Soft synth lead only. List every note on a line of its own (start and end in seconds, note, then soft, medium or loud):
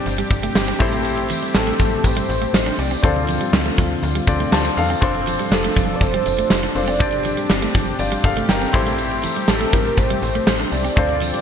1.55 2.05 A4 medium
2.04 2.53 C5 loud
2.54 2.80 C5 loud
2.79 3.28 D5 loud
5.52 5.97 A4 medium
5.95 6.04 D5 medium
6.03 6.51 C5 loud
6.52 6.63 C5 loud
6.77 7.22 D5 loud
9.49 9.74 A4 medium
9.73 9.99 A#4 medium
9.98 10.46 C5 loud
10.47 10.58 C5 loud
10.71 11.41 D5 loud